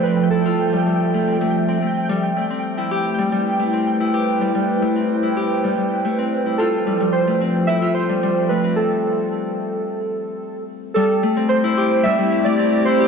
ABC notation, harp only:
X:1
M:4/4
L:1/16
Q:1/4=110
K:Am
V:1 name="Harp"
C z E F z G, G, z A, C A, z C A, z G, | z A, C z E G z G, G, z A, C z E G z | G, G, z A, C z E G z G, G, z A, C z E | F z G, G, z A, C z E F z G, G, z A, C |
z16 | G, z A, C z E G z G, G, z A, C z E G |]